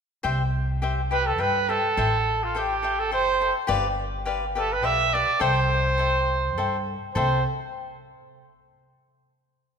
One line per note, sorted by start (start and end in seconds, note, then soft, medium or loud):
0.23 1.40 C2 medium
0.23 0.42 G4 medium
0.23 0.42 C5 medium
0.23 0.42 E5 medium
0.23 0.42 G5 medium
0.82 1.00 G4 medium
0.82 1.00 C5 soft
0.82 1.00 E5 medium
0.82 1.01 G5 medium
1.11 1.28 G4 soft
1.11 1.28 B4 medium
1.11 1.29 C5 soft
1.11 1.29 E5 soft
1.11 1.29 G5 soft
1.26 1.42 A4 medium
1.38 1.77 G2 medium
1.38 1.57 G4 soft
1.38 1.71 B4 medium
1.38 1.57 C5 soft
1.38 1.57 E5 soft
1.38 1.58 G5 soft
1.68 1.86 G4 soft
1.68 2.45 A4 medium
1.68 1.86 C5 soft
1.68 1.86 E5 soft
1.68 1.87 G5 soft
1.97 3.12 A1 medium
1.97 2.15 A4 medium
1.97 2.15 C5 medium
1.97 2.16 E5 medium
1.97 2.16 G5 medium
2.44 2.56 F4 medium
2.55 3.01 G4 medium
2.55 2.72 A4 medium
2.55 2.73 C5 medium
2.55 2.74 E5 soft
2.55 2.74 G5 soft
2.82 3.00 A4 soft
2.82 3.00 C5 soft
2.82 3.01 E5 soft
2.82 3.01 G5 soft
2.99 3.13 A4 medium
3.11 3.50 F#1 medium
3.11 3.29 A4 soft
3.11 3.30 C5 soft
3.11 3.53 C5 medium
3.11 3.30 E5 soft
3.11 3.30 G5 medium
3.40 3.58 A4 soft
3.40 3.58 C5 soft
3.40 3.58 E5 soft
3.40 3.59 G5 soft
3.67 4.83 G1 medium
3.67 3.86 G4 medium
3.67 3.86 B4 medium
3.67 3.87 D5 medium
3.67 3.87 F5 medium
4.26 4.44 G4 medium
4.26 4.44 B4 medium
4.26 4.45 D5 medium
4.26 4.44 F5 soft
4.55 4.73 G4 soft
4.55 4.74 A4 medium
4.55 4.73 B4 soft
4.55 4.74 D5 soft
4.55 4.73 F5 soft
4.72 4.86 B4 medium
4.82 5.21 B1 medium
4.82 5.01 G4 soft
4.82 5.01 B4 soft
4.82 5.02 D5 soft
4.82 5.15 E5 medium
4.82 5.02 F5 soft
5.13 5.30 G4 soft
5.13 5.31 B4 soft
5.13 5.43 D5 medium
5.13 5.31 D5 soft
5.13 5.31 F5 soft
5.40 6.57 C2 medium
5.40 5.58 A4 medium
5.40 5.59 C5 medium
5.40 6.87 C5 medium
5.40 5.59 E5 medium
5.40 5.59 G5 medium
5.98 6.16 A4 soft
5.98 6.17 C5 soft
5.98 6.17 E5 soft
5.98 6.17 G5 medium
6.57 6.95 G2 medium
6.57 6.75 A4 medium
6.57 6.75 C5 soft
6.57 6.76 E5 medium
6.57 6.76 G5 soft
7.15 7.43 C2 medium
7.15 7.39 A4 medium
7.15 7.43 C5 medium
7.15 7.39 C5 medium
7.15 7.40 E5 medium
7.15 7.40 G5 medium